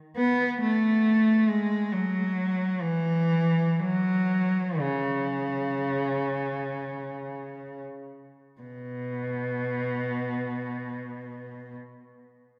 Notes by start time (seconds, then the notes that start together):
0.17 B3
0.62 A3
1.49 G#3
1.92 F#3
2.82 E3
3.80 F#3
4.79 C#3
8.62 B2